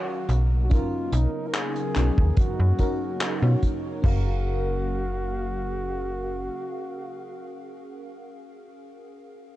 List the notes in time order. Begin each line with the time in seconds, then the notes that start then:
Already playing: D#3 F#3 C#4 F#4 A#4 C#5 F5
0.29 B1 C#3 A#3 B3 D#4, closed hi-hat
0.64 F#4
0.70 F#3 C#4 D#4 F4 A#4, kick, closed hi-hat
1.12 B1 D#4, closed hi-hat
1.47 A#4
1.54 G#4, clap, closed hi-hat
1.76 closed hi-hat
1.95 B1 C#4 D#4 F#4 A#4, clap, closed hi-hat
2.18 D#2, kick
2.37 F#4, kick, closed hi-hat
2.60 F#2
2.79 C#4 D#4 F#4 A#4, kick, closed hi-hat
3.20 clap, closed hi-hat
3.26 G#4
3.36 F#4
3.42 B2 C#4 D#4 F4 F#4 C#5
3.54 F#4
3.62 kick, closed hi-hat
4.02 F#1 C#3 F#3 A#3 C#4 F#4 G#4 F5, kick, crash
4.06 A#4